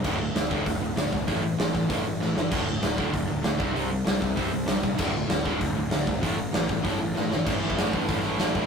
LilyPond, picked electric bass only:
\new Staff \with { instrumentName = "Picked electric bass" } { \clef bass \time 4/4 \key a \phrygian \tempo 4 = 194 d,,4 d,,8 d,,8 d,,8 d,,8 d,8 c,8 | a,,4 a,,8 a,,8 a,,8 a,,8 a,8 g,,8 | d,,4 d,,8 d,,8 d,,8 d,,8 d,8 c,8 | c,4 c,8 c,8 c,8 c,8 c,8 bes,,8 |
d,,4 d,,8 d,,8 d,,8 d,,8 d,8 c,8 | a,,4 a,,8 a,,8 a,,8 a,,8 a,8 g,,8 | a,,8 a,,8 a,,8 a,,8 a,,8 a,,8 a,,8 a,,8 | }